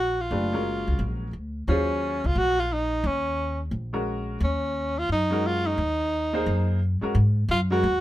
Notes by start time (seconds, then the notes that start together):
Already playing: A#1 F#4
0.21 F4
0.31 F#1 A3 D4 G4 B4
0.53 F#3 G#3 C#4 A#4
0.87 C#2
0.99 A#1
1.33 D2
1.68 D#2 F#3 C#4 F4 G#4 C5
2.24 C#2 F4
2.35 A#1 F#4
2.60 F4
2.73 D#4
3.04 D#2 C#4
3.71 A#1
3.93 G#3 C#4 F#4 A#4
4.40 D#2 C#4
4.99 F4
5.09 F#2 D#4
5.30 G#3 C#4 F#4 A#4
5.47 F4
5.67 D#4
5.78 D#2
6.33 A#3 D#4 G#4 C5
6.46 F#2
7.01 G#3 C#4 F#4 A#4, muted upright bass stroke
7.15 G#2
7.49 F#2 F4
7.70 G#3 C#4 F#4 A#4
7.83 D#2